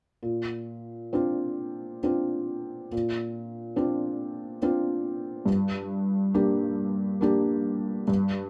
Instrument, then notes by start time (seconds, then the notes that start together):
felt piano
0.23 A#2
1.13 C4 D4 F4
2.03 C4 D4 F4
2.92 A#2
3.76 C4 D4 F4
4.62 C4 D4 F4
5.46 G2
6.34 A#3 D4 G4
7.21 A#3 D4 G4
8.08 G2